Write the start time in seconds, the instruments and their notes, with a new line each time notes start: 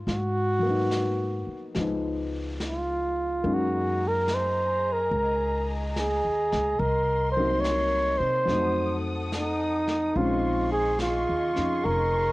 Already playing: grand piano D#4
0.07 upright bass G#2, flugelhorn F#4, brush sweep, snare
0.59 grand piano F#3 A#3
0.66 grand piano B3 D#4
0.91 snare, hi-hat pedal
1.47 muted upright bass stroke
1.75 upright bass C#2, grand piano F3 G#3 B3, brush sweep, snare
1.80 grand piano D#4
2.60 snare, hi-hat pedal
2.67 flugelhorn F4
3.43 upright bass F#2, grand piano G#3 A#3 C#4 D#4, string section G#4 D#5 A#5, brush sweep
3.54 flugelhorn F#4
4.08 flugelhorn A#4
4.28 snare, hi-hat pedal
4.34 flugelhorn C5
4.93 flugelhorn A#4
5.11 upright bass C#2, brush sweep
5.96 flugelhorn G#4, snare, hi-hat pedal
6.24 upright bass D#2
6.52 upright bass C#2, snare
6.79 upright bass C2, flugelhorn A#4, string section A#4, brush sweep
6.83 string section C6
7.32 flugelhorn C5
7.37 grand piano C3 F#3 A#3 D#4
7.61 flugelhorn C#5, snare, hi-hat pedal
8.18 upright bass C3, flugelhorn C5
8.46 upright bass F2, grand piano F#3 A3 C4, brush sweep, snare
8.50 grand piano D#4, string section A4 F#5 D#6
9.32 flugelhorn D#4, snare, hi-hat pedal
9.87 snare
10.15 upright bass A#1, grand piano G#3 C4 C#4 D#4, flugelhorn F4, string section G#4 D#5 C6 C#6, brush sweep
10.72 flugelhorn G#4
10.99 flugelhorn F4, snare, hi-hat pedal
11.29 upright bass D#2
11.54 upright bass F2, grand piano C#4 D#4 F4, snare
11.84 upright bass F1, flugelhorn A#4, brush sweep